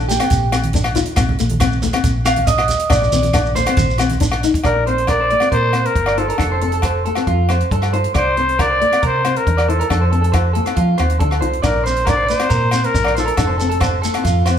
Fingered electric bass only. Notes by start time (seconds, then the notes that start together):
Already playing: A#1
0.31 A#1
1.17 A#1
1.40 A#1
2.04 A#1
2.90 A#1
3.13 A#1
3.77 A#1
4.65 A#1
5.52 A#2
5.96 G1
6.40 F1
7.27 F2
7.71 G2
8.16 C2
9.03 C3
9.47 E2
9.91 F2
10.78 F3
10.99 D#2
11.21 D2
11.43 C2
11.64 A#1
12.51 A#2
12.95 A#1
13.38 F1
14.25 F2